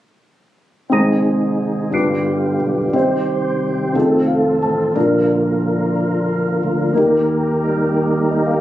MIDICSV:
0, 0, Header, 1, 4, 480
1, 0, Start_track
1, 0, Key_signature, -4, "major"
1, 0, Tempo, 671892
1, 659, Time_signature, 6, 3, 24, 8
1, 6150, End_track
2, 0, Start_track
2, 0, Title_t, "Grand piano"
2, 0, Program_c, 0, 0
2, 640, Note_on_c, 0, 60, 52
2, 650, Note_on_c, 0, 63, 45
2, 654, Note_on_c, 0, 44, 54
2, 657, Note_on_c, 0, 68, 45
2, 665, Note_on_c, 0, 72, 55
2, 785, Control_c, 0, 64, 127
2, 1347, Note_off_c, 0, 44, 0
2, 1359, Note_on_c, 0, 62, 45
2, 1369, Note_off_c, 0, 60, 0
2, 1370, Note_on_c, 0, 65, 42
2, 1374, Note_off_c, 0, 63, 0
2, 1374, Note_on_c, 0, 43, 44
2, 1377, Note_on_c, 0, 67, 47
2, 1378, Note_off_c, 0, 68, 0
2, 1382, Note_off_c, 0, 72, 0
2, 1383, Note_on_c, 0, 71, 51
2, 1388, Control_c, 0, 64, 0
2, 1516, Control_c, 0, 64, 127
2, 2068, Note_off_c, 0, 43, 0
2, 2089, Note_off_c, 0, 62, 0
2, 2094, Note_off_c, 0, 65, 0
2, 2094, Note_on_c, 0, 60, 57
2, 2096, Note_off_c, 0, 67, 0
2, 2097, Note_on_c, 0, 63, 49
2, 2101, Note_off_c, 0, 71, 0
2, 2104, Note_on_c, 0, 48, 52
2, 2107, Note_on_c, 0, 67, 48
2, 2108, Control_c, 0, 64, 0
2, 2115, Note_on_c, 0, 72, 57
2, 2241, Control_c, 0, 64, 127
2, 2793, Note_off_c, 0, 48, 0
2, 2797, Note_off_c, 0, 60, 0
2, 2805, Note_off_c, 0, 63, 0
2, 2808, Note_on_c, 0, 60, 51
2, 2816, Note_on_c, 0, 63, 44
2, 2823, Note_off_c, 0, 67, 0
2, 2824, Note_on_c, 0, 65, 42
2, 2827, Note_off_c, 0, 72, 0
2, 2828, Control_c, 0, 64, 0
2, 2832, Note_on_c, 0, 68, 45
2, 2872, Note_off_c, 0, 68, 0
2, 2879, Note_on_c, 0, 69, 55
2, 2972, Control_c, 0, 64, 127
2, 3055, Note_on_c, 0, 77, 53
2, 3280, Note_off_c, 0, 77, 0
2, 3303, Note_on_c, 0, 81, 49
2, 3520, Note_on_c, 0, 58, 54
2, 3525, Note_off_c, 0, 81, 0
2, 3534, Note_off_c, 0, 60, 0
2, 3538, Note_off_c, 0, 63, 0
2, 3538, Note_on_c, 0, 62, 56
2, 3542, Note_off_c, 0, 65, 0
2, 3543, Note_on_c, 0, 46, 53
2, 3549, Control_c, 0, 64, 0
2, 3553, Note_on_c, 0, 65, 51
2, 3569, Note_off_c, 0, 69, 0
2, 3572, Note_on_c, 0, 70, 63
2, 3688, Control_c, 0, 64, 127
2, 4233, Note_off_c, 0, 46, 0
2, 4941, Note_off_c, 0, 58, 0
2, 4952, Note_off_c, 0, 62, 0
2, 4952, Note_on_c, 0, 58, 57
2, 4959, Note_off_c, 0, 65, 0
2, 4968, Note_off_c, 0, 70, 0
2, 4971, Note_on_c, 0, 63, 51
2, 4977, Note_on_c, 0, 51, 58
2, 4983, Note_on_c, 0, 67, 52
2, 4989, Control_c, 0, 64, 0
2, 5000, Note_on_c, 0, 70, 62
2, 5103, Control_c, 0, 64, 127
2, 5671, Note_off_c, 0, 51, 0
2, 5935, Note_on_c, 0, 75, 42
2, 6047, Note_on_c, 0, 77, 46
2, 6052, Note_off_c, 0, 75, 0
2, 6150, Note_off_c, 0, 58, 0
2, 6150, Note_off_c, 0, 63, 0
2, 6150, Note_off_c, 0, 67, 0
2, 6150, Note_off_c, 0, 70, 0
2, 6150, Note_off_c, 0, 77, 0
2, 6150, End_track
3, 0, Start_track
3, 0, Title_t, "Tonewheel organ"
3, 0, Program_c, 1, 16
3, 660, Note_on_c, 1, 56, 36
3, 663, Note_on_c, 1, 48, 43
3, 663, Note_on_c, 1, 51, 38
3, 664, Note_on_c, 1, 63, 38
3, 665, Note_on_c, 1, 68, 51
3, 1372, Note_off_c, 1, 56, 0
3, 1373, Note_off_c, 1, 51, 0
3, 1374, Note_off_c, 1, 48, 0
3, 1374, Note_off_c, 1, 63, 0
3, 1375, Note_off_c, 1, 68, 0
3, 1383, Note_on_c, 1, 50, 44
3, 1384, Note_on_c, 1, 59, 39
3, 1384, Note_on_c, 1, 65, 40
3, 1388, Note_on_c, 1, 67, 45
3, 1390, Note_on_c, 1, 55, 38
3, 2093, Note_off_c, 1, 50, 0
3, 2094, Note_off_c, 1, 59, 0
3, 2094, Note_off_c, 1, 65, 0
3, 2097, Note_off_c, 1, 55, 0
3, 2108, Note_on_c, 1, 55, 39
3, 2111, Note_on_c, 1, 72, 44
3, 2112, Note_on_c, 1, 51, 46
3, 2112, Note_on_c, 1, 60, 42
3, 2809, Note_off_c, 1, 67, 0
3, 2816, Note_off_c, 1, 55, 0
3, 2816, Note_on_c, 1, 65, 44
3, 2818, Note_off_c, 1, 72, 0
3, 2818, Note_on_c, 1, 69, 51
3, 2819, Note_on_c, 1, 57, 43
3, 3531, Note_off_c, 1, 69, 0
3, 3532, Note_off_c, 1, 51, 0
3, 3532, Note_off_c, 1, 57, 0
3, 3532, Note_off_c, 1, 60, 0
3, 3539, Note_on_c, 1, 70, 47
3, 3543, Note_on_c, 1, 58, 43
3, 3544, Note_on_c, 1, 50, 49
3, 3544, Note_on_c, 1, 53, 43
3, 4958, Note_off_c, 1, 65, 0
3, 4969, Note_off_c, 1, 50, 0
3, 4969, Note_off_c, 1, 53, 0
3, 4980, Note_on_c, 1, 67, 44
3, 4983, Note_on_c, 1, 51, 45
3, 5453, Note_off_c, 1, 58, 0
3, 5457, Note_on_c, 1, 63, 82
3, 5461, Note_on_c, 1, 58, 50
3, 5462, Note_on_c, 1, 55, 46
3, 6051, Note_off_c, 1, 70, 0
3, 6059, Note_on_c, 1, 70, 63
3, 6078, Note_off_c, 1, 63, 0
3, 6150, Note_off_c, 1, 51, 0
3, 6150, Note_off_c, 1, 55, 0
3, 6150, Note_off_c, 1, 58, 0
3, 6150, Note_off_c, 1, 67, 0
3, 6150, Note_off_c, 1, 70, 0
3, 6150, End_track
4, 0, Start_track
4, 0, Title_t, "Fingered electric bass"
4, 0, Program_c, 2, 33
4, 655, Note_on_c, 2, 32, 62
4, 1348, Note_off_c, 2, 32, 0
4, 1377, Note_on_c, 2, 31, 63
4, 1829, Note_off_c, 2, 31, 0
4, 1856, Note_on_c, 2, 35, 54
4, 2078, Note_off_c, 2, 35, 0
4, 2095, Note_on_c, 2, 36, 71
4, 2789, Note_off_c, 2, 36, 0
4, 2824, Note_on_c, 2, 29, 71
4, 3273, Note_off_c, 2, 29, 0
4, 3301, Note_on_c, 2, 33, 55
4, 3521, Note_off_c, 2, 33, 0
4, 3540, Note_on_c, 2, 34, 73
4, 4712, Note_off_c, 2, 34, 0
4, 4738, Note_on_c, 2, 38, 53
4, 4960, Note_off_c, 2, 38, 0
4, 4982, Note_on_c, 2, 39, 66
4, 6150, Note_off_c, 2, 39, 0
4, 6150, End_track
0, 0, End_of_file